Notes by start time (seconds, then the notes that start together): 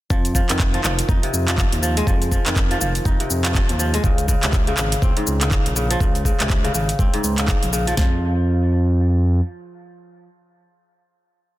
0.10 F2 F3, kick, shaker
0.25 closed hi-hat, shaker
0.35 F3, kick, shaker
0.49 F2 D#3, clap, closed hi-hat, shaker
0.59 kick, clap, shaker
0.74 F3, closed hi-hat
0.84 F1 F3, clap, shaker
0.99 closed hi-hat, shaker
1.09 F2 D#4, kick, shaker
1.23 C3, closed hi-hat
1.33 F2, shaker
1.48 F3, clap, closed hi-hat, shaker
1.58 F3, kick, clap, shaker
1.72 D#2, closed hi-hat
1.82 F3, shaker
1.97 G#3, closed hi-hat, shaker
2.07 F2 F3, kick, shaker
2.22 closed hi-hat, shaker
2.32 F3, kick, shaker
2.46 F2 D#3, clap, closed hi-hat, shaker
2.56 kick, clap, shaker
2.71 F3, closed hi-hat
2.81 F1 F3, shaker
2.95 closed hi-hat, shaker
3.05 F2 D#4, kick, shaker
3.20 C3, closed hi-hat
3.30 F2, shaker
3.45 F3, clap, closed hi-hat, shaker
3.54 F3, kick, clap, shaker
3.69 D#2, closed hi-hat
3.79 F3, shaker
3.94 G#3, closed hi-hat, shaker
4.04 C#2 C#3, kick, shaker
4.18 closed hi-hat, shaker
4.28 C#3, kick, shaker
4.43 C#2 C3, clap, closed hi-hat, shaker
4.53 kick, clap, shaker
4.67 C#3, closed hi-hat
4.77 G#1 C#3, clap, shaker
4.92 closed hi-hat, shaker
5.02 C#2 C4, kick, shaker
5.17 G#2, closed hi-hat
5.27 C#2, shaker
5.41 C#3, clap, closed hi-hat, shaker
5.51 C#3, kick, clap, shaker
5.66 A#1, closed hi-hat
5.76 C#3, shaker
5.91 F3, closed hi-hat, shaker
6.00 C#2 C#3, kick, shaker
6.15 closed hi-hat, shaker
6.25 C#3, kick, shaker
6.40 C#2 C3, clap, closed hi-hat, shaker
6.50 kick, clap, shaker
6.64 C#3, closed hi-hat
6.75 G#1 C#3, shaker
6.89 closed hi-hat, shaker
6.99 C#2 C4, kick, shaker
7.14 G#2, closed hi-hat
7.24 C#2, shaker
7.38 C#3, clap, closed hi-hat, shaker
7.48 C#3, kick, clap, shaker
7.63 A#1, closed hi-hat, shaker
7.73 C#3, shaker
7.87 F3, closed hi-hat, shaker
7.97 F2 F3, kick, snare